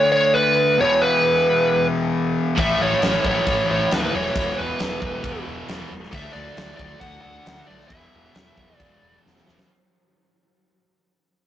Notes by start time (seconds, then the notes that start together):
Already playing: D3 A3 D4
0.12 C#5
0.34 B4
0.79 E2 B2 E3 C#5
1.02 B4
2.57 A1 A2 E3 A3 E5, kick, crash
2.80 A1 C#5
3.02 A1, snare, crash
3.23 A1 A2 E3 A3 C#5, kick
3.47 A1, kick, crash
3.70 A1 C#5
3.91 D#2 B4, snare, crash
4.05 B4
4.14 E1 E2 B2 E3 C#5
4.26 snare
4.36 E1, kick, crash
4.58 E1 B4
4.79 E1 E2 B2 E3, snare, crash
5.02 E1, kick
5.24 E1, kick, crash
5.48 E1
5.67 E1 E2 B2, snare, crash
5.71 E3
5.91 E1
6.03 snare
6.12 D2 D3 A3 D4 E5, kick, crash
6.33 D2 D5
6.57 D2, snare, crash
6.77 D2 D3 A3 D4 D5, kick
7.00 D2 F#5, kick, crash
7.21 D2 F#5
7.46 D2, snare, crash
7.66 B1 A3 D4 D5
7.70 D3
7.80 snare
7.88 E1 E2 B2 E3 E5, kick, crash
8.14 E1
8.35 E1, snare, crash
8.57 E1 E2 B2 E3, kick
8.77 E1 D5, kick, crash
9.03 E1
9.26 E1, snare
9.37 snare
9.46 E1 B2 E3, snare
9.50 E2
9.59 snare